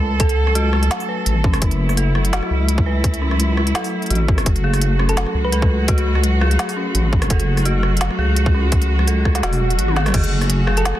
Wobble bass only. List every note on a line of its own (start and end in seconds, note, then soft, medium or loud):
0.00 0.90 C#2 medium
1.26 1.55 A1 medium
1.54 1.61 G#1 medium
1.62 2.41 F#1 loud
2.51 3.74 C#2 medium
4.10 4.39 A1 medium
4.38 4.45 G#1 loud
4.46 5.25 F#1 loud
5.34 6.58 C#2 medium
6.95 7.23 A1 medium
7.22 7.29 G#1 medium
7.30 8.09 F#1 loud
8.18 9.42 C#2 medium
9.43 9.80 E1 loud
9.79 10.13 G#1 medium
10.14 10.93 F#1 loud